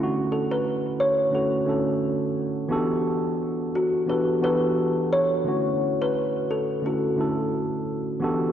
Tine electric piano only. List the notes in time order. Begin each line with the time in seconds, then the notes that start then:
Already playing: D3 A3 C#4 E4
0.03 F#4
1.31 D3 A3 C#4 E4 F#4
1.65 D3 A3 C#4 E4
1.69 A4
2.68 E3 B3 D4 F#4 G4
2.72 A4
4.06 E3 B3 D4 F#4 G4
4.10 A4
4.41 E3 B3 D4 F#4 G4 A4
5.44 D3 A3 C#4 E4
5.48 F#4
6.82 D3 A3 C#4 E4 A4
7.16 D3 A3 C#4 E4
7.20 A4
8.20 E3 B3 D4 F#4 G4
8.24 A4